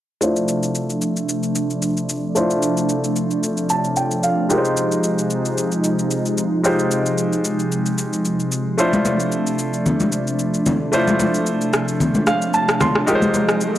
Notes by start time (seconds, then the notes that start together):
0.21 C3 F3 A3 D4 E4 F4 C5, shaker
0.36 shaker
0.48 shaker
0.63 shaker
0.75 shaker
0.90 shaker
1.02 shaker
1.17 shaker
1.29 shaker
1.43 shaker
1.55 shaker
1.70 shaker
1.82 shaker
1.97 shaker
2.09 shaker
2.35 A3 D4 E4 F4 C5, shaker
2.50 shaker
2.62 shaker
2.77 shaker
2.89 shaker
3.04 shaker
3.16 shaker
3.31 shaker
3.43 shaker
3.57 shaker
3.69 A5, shaker
3.84 shaker
3.96 G5, shaker
4.11 shaker
4.23 F5, shaker
4.49 G#3 D#4 F4 G4 A#4, shaker
4.58 C5
4.65 shaker
4.77 shaker
4.92 shaker
5.03 shaker
5.18 shaker
5.30 shaker
5.45 shaker
5.58 shaker
5.72 shaker
5.84 shaker
5.99 shaker
6.11 shaker
6.25 shaker
6.38 shaker
6.63 G#3 D#4 F4 G4 C5, shaker
6.79 shaker
6.91 shaker
7.06 shaker
7.18 shaker
7.33 shaker
7.45 shaker
7.59 shaker
7.72 shaker
7.86 shaker
7.98 shaker
8.13 shaker
8.25 shaker
8.40 shaker
8.52 shaker
8.78 A3 D4 E4 F4 C5, shaker
8.93 high conga, shaker
9.05 high conga, shaker
9.20 shaker
9.32 shaker
9.47 shaker
9.59 shaker
9.73 shaker
9.86 low conga, shaker
10.00 high conga, shaker
10.12 shaker
10.27 shaker
10.39 shaker
10.54 shaker
10.66 high conga, low conga, shaker
10.92 A3 D4 E4 F4 C5, shaker
11.07 high conga, shaker
11.19 high conga, shaker
11.34 shaker
11.46 shaker
11.61 shaker
11.73 cross-stick, shaker
11.88 shaker
12.00 low conga, shaker
12.15 high conga, shaker
12.27 F5, cross-stick, shaker
12.42 shaker
12.54 A5, shaker
12.69 cross-stick, shaker
12.80 C6, cross-stick, high conga, low conga, shaker
12.95 cross-stick
13.06 C3 F3 G#3 D#4 F4 G4 A#4, riser, shaker
13.15 C5
13.22 high conga, shaker
13.34 high conga, shaker
13.49 cross-stick, shaker
13.61 shaker